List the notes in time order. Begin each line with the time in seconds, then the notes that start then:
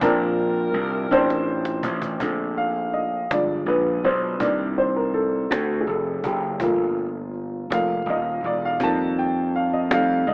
0.01 A#1 A#2 C4 D4 F4 A#4 A5, cajon bass
0.06 A#4
0.39 cajon slap
0.74 C2, cajon slap
1.11 A1 C4 D4 C5 A5, cajon slap
1.30 cajon slap
1.47 cajon slap
1.65 cajon slap
1.83 A1, cajon bass
2.02 cajon bass
2.20 A#1 D3 A3 C4, cajon bass
2.57 F5, cajon slap
2.94 D#5, cajon slap
3.30 G1 F3 G#3 D4 D5, cajon slap
3.66 A#1 B4, cajon slap
3.68 cajon slap
4.03 B1 C5, cajon slap
4.40 C2 D#3 A#3 D4 D5, cajon bass
4.77 C5, cajon slap
4.96 A#4
5.13 A4, cajon slap
5.50 D2 A3 C4 F#4, cajon slap
5.81 G#4
5.87 F1, cajon slap
5.88 A4, cajon slap
6.24 F#1 G4, cajon bass
6.60 G1 F3 A3 A#3 F4, cajon bass
6.97 cajon slap
7.34 cajon slap
7.70 F1 F3 A3 A#3 F5, cajon slap
8.06 D#1, cajon slap
8.08 D#5, cajon slap
8.43 E1 D5, cajon slap
8.65 F5
8.80 F2 D#3 G3 A#3 A5, cajon bass
9.17 G5, cajon slap
9.53 F5, cajon slap
9.73 D#5
9.91 F2 G3 A3 D#4 F5, cajon slap
10.27 C#2 D#5, cajon slap
10.29 cajon slap